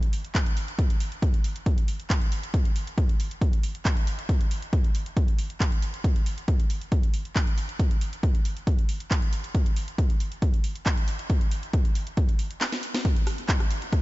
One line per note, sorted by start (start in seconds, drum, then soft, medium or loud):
0.03 closed hi-hat medium
0.13 open hi-hat loud
0.24 closed hi-hat medium
0.35 kick loud
0.35 clap loud
0.35 closed hi-hat medium
0.46 closed hi-hat medium
0.57 open hi-hat medium
0.68 closed hi-hat medium
0.79 kick loud
0.79 closed hi-hat medium
0.90 closed hi-hat medium
1.00 open hi-hat loud
1.12 closed hi-hat medium
1.22 kick loud
1.22 closed hi-hat medium
1.34 closed hi-hat medium
1.44 open hi-hat loud
1.56 closed hi-hat medium
1.66 kick loud
1.66 closed hi-hat medium
1.78 closed hi-hat medium
1.88 open hi-hat loud
2.00 closed hi-hat medium
2.10 kick loud
2.10 clap loud
2.10 closed hi-hat medium
2.21 closed hi-hat medium
2.32 open hi-hat medium
2.43 closed hi-hat medium
2.54 kick loud
2.54 closed hi-hat medium
2.65 closed hi-hat medium
2.76 open hi-hat loud
2.87 closed hi-hat medium
2.98 kick loud
2.98 closed hi-hat medium
3.09 closed hi-hat medium
3.20 open hi-hat loud
3.31 closed hi-hat medium
3.41 kick loud
3.41 closed hi-hat medium
3.53 closed hi-hat medium
3.63 open hi-hat loud
3.75 closed hi-hat medium
3.85 kick loud
3.85 clap loud
3.85 closed hi-hat medium
3.97 closed hi-hat medium
4.07 open hi-hat medium
4.19 closed hi-hat medium
4.29 kick loud
4.29 closed hi-hat medium
4.41 closed hi-hat medium
4.51 open hi-hat loud
4.62 closed hi-hat medium
4.73 kick loud
4.73 closed hi-hat medium
4.84 closed hi-hat medium
4.95 open hi-hat loud
5.06 closed hi-hat medium
5.17 kick loud
5.17 closed hi-hat medium
5.28 closed hi-hat medium
5.39 open hi-hat loud
5.50 closed hi-hat medium
5.60 kick loud
5.60 clap loud
5.60 closed hi-hat medium
5.72 closed hi-hat medium
5.82 open hi-hat medium
5.94 closed hi-hat medium
6.04 kick loud
6.04 closed hi-hat medium
6.16 closed hi-hat medium
6.26 open hi-hat loud
6.38 closed hi-hat soft
6.48 kick loud
6.48 closed hi-hat medium
6.60 closed hi-hat soft
6.70 open hi-hat medium
6.81 closed hi-hat medium
6.92 kick loud
6.92 closed hi-hat medium
7.03 closed hi-hat soft
7.14 open hi-hat loud
7.25 closed hi-hat medium
7.36 kick loud
7.36 clap loud
7.36 closed hi-hat medium
7.47 closed hi-hat medium
7.58 open hi-hat medium
7.69 closed hi-hat soft
7.79 kick loud
7.79 closed hi-hat medium
7.91 closed hi-hat medium
8.01 open hi-hat loud
8.13 closed hi-hat medium
8.23 kick loud
8.23 closed hi-hat medium
8.35 closed hi-hat soft
8.45 open hi-hat medium
8.57 closed hi-hat medium
8.67 kick loud
8.67 closed hi-hat medium
8.78 closed hi-hat soft
8.89 open hi-hat loud
9.00 closed hi-hat medium
9.11 kick loud
9.11 clap loud
9.11 closed hi-hat medium
9.22 closed hi-hat medium
9.33 open hi-hat medium
9.44 closed hi-hat soft
9.55 kick loud
9.55 closed hi-hat medium
9.66 closed hi-hat medium
9.77 open hi-hat loud
9.88 closed hi-hat medium
9.98 kick loud
9.98 closed hi-hat medium
10.10 closed hi-hat soft
10.20 open hi-hat medium
10.32 closed hi-hat medium
10.42 kick loud
10.42 closed hi-hat medium
10.54 closed hi-hat medium
10.64 open hi-hat loud
10.75 closed hi-hat soft
10.86 kick loud
10.86 clap loud
10.86 closed hi-hat medium
10.97 closed hi-hat medium
11.08 open hi-hat medium
11.19 closed hi-hat medium
11.30 kick loud
11.30 closed hi-hat medium
11.41 closed hi-hat medium
11.52 open hi-hat loud
11.63 closed hi-hat medium
11.73 kick loud
11.73 closed hi-hat medium
11.85 closed hi-hat medium
11.95 open hi-hat medium
12.07 closed hi-hat medium
12.17 kick loud
12.17 closed hi-hat medium
12.29 closed hi-hat medium
12.39 open hi-hat loud
12.51 closed hi-hat medium
12.61 snare medium
12.61 clap loud
12.61 closed hi-hat medium
12.72 snare medium
12.72 closed hi-hat medium
12.83 open hi-hat medium
12.94 snare medium
12.94 closed hi-hat medium
13.05 kick loud
13.05 closed hi-hat medium
13.16 closed hi-hat medium
13.27 cross-stick medium
13.27 open hi-hat loud
13.38 closed hi-hat medium
13.49 kick loud
13.49 clap loud
13.49 closed hi-hat medium
13.60 cross-stick medium
13.60 closed hi-hat medium
13.71 open hi-hat medium
13.82 closed hi-hat medium
13.92 kick loud
13.92 cross-stick medium
13.92 closed hi-hat medium